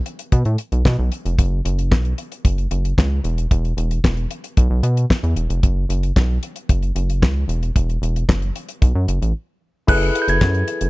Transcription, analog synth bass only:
0.32 0.43 B2 loud
0.46 0.57 A2 medium
0.72 0.83 B1 medium
0.85 0.96 B2 medium
0.99 1.10 B1 medium
1.25 1.36 F1 medium
1.38 1.61 F#1 loud
1.65 1.93 F#1 loud
1.92 2.14 B1 medium
2.45 2.67 F#1 medium
2.71 2.93 F#1 medium
2.98 3.20 C#2 medium
3.24 3.46 E1 loud
3.51 3.73 E1 loud
3.77 3.99 E1 loud
4.04 4.26 E1 medium
4.57 4.68 B1 loud
4.70 4.81 B1 medium
4.83 5.05 B2 medium
5.23 5.34 E2 medium
5.36 5.47 E1 medium
5.49 5.61 F1 medium
5.63 5.85 F#1 loud
5.89 6.12 F#1 medium
6.16 6.38 B1 medium
6.69 6.91 F#1 medium
6.96 7.24 F#1 medium
7.22 7.44 C#2 medium
7.48 7.71 E1 medium
7.76 7.98 E1 loud
8.02 8.24 E1 loud
8.29 8.51 F#1 medium
8.82 8.93 B1 loud
8.95 9.06 F#2 medium
9.08 9.19 F#1 medium
9.22 9.33 A1 medium
9.88 10.10 F#1 loud
10.28 10.39 F#1 loud
10.41 10.63 F#2 loud
10.81 10.90 F#1 medium

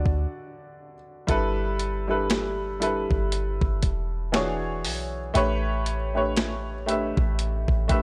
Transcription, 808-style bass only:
0.06 0.26 D2 loud
1.29 3.07 G1 loud
3.11 3.59 G1 loud
3.62 3.82 G1 loud
3.83 4.86 E1 loud
4.85 5.33 B1 loud
5.35 7.13 A1 loud
7.17 7.66 A1 loud
7.68 7.89 A1 loud
7.90 8.02 A1 loud

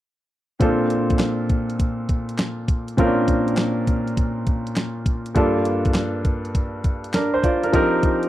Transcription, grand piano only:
0.60 2.94 A#2 medium
0.60 2.94 C4 medium
0.60 2.94 D4 medium
0.60 2.95 F4 medium
0.60 2.95 A4 medium
2.97 5.31 A#2 medium
2.97 5.32 C4 medium
2.97 3.07 C#4 medium
2.97 5.32 F4 medium
2.97 5.33 A#4 medium
3.05 5.34 D4 medium
5.35 7.39 G2 medium
5.35 7.39 A#3 medium
5.35 7.10 D4 medium
5.35 7.11 F4 medium
5.35 7.11 A4 medium
7.14 7.33 D4 medium
7.14 7.33 A#4 medium
7.34 7.43 C5 medium
7.44 7.63 F4 medium
7.44 7.63 D5 medium
7.64 7.92 D4 medium
7.64 7.73 A#4 medium
7.72 8.29 F3 medium
7.72 8.29 C4 medium
7.72 8.29 D#4 medium
7.72 8.29 G4 medium
7.72 8.29 A#4 medium

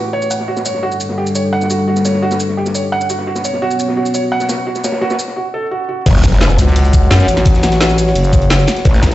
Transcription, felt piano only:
0.00 0.12 F#4 medium
0.13 0.30 C#5 loud
0.31 0.38 F#5 medium
0.48 0.60 F#4 medium
0.65 0.82 C#5 medium
0.83 0.95 F#4 loud
1.18 1.25 G4 medium
1.35 1.43 C#5 medium
1.53 1.65 F#5 loud
1.70 1.82 F#4 medium
1.88 2.00 F#4 medium
2.05 2.22 C#5 medium
2.22 2.35 F#4 loud
2.57 2.65 G4 medium
2.75 2.82 C#5 medium
2.92 3.04 F#5 loud
3.10 3.22 F#4 medium
3.27 3.39 F#4 medium
3.45 3.61 C#5 medium
3.62 3.74 F#4 loud
3.97 4.04 F#4 medium
4.14 4.22 C#5 medium
4.32 4.44 F#5 loud
4.49 4.61 F#4 medium
4.67 4.79 F#4 medium
4.84 5.01 C#5 medium
5.02 5.14 F#4 loud
5.36 5.44 F#4 medium
5.54 5.66 A4 medium
5.71 5.83 F#4 medium
5.89 6.01 F#4 medium

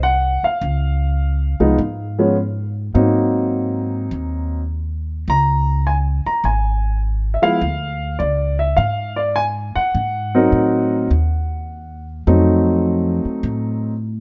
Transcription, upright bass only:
0.00 0.40 C2 medium
0.43 muted upright bass stroke soft
0.61 1.56 C#2 medium
1.60 1.77 C2 medium
1.78 2.91 G#2 medium
2.95 4.08 G#2 medium
4.11 5.24 D#2 medium
5.28 6.22 C#2 medium
6.26 muted upright bass stroke soft
6.44 7.39 G#1 medium
7.43 muted upright bass stroke soft
7.61 8.15 D2 medium
8.20 8.74 C#2 medium
8.78 9.72 G#2 medium
9.76 muted upright bass stroke soft
9.95 10.48 G#2 medium
10.52 11.06 A2 medium
11.11 12.23 D#2 medium
12.27 13.21 F2 medium
13.25 muted upright bass stroke soft
13.43 14.20 A2 medium

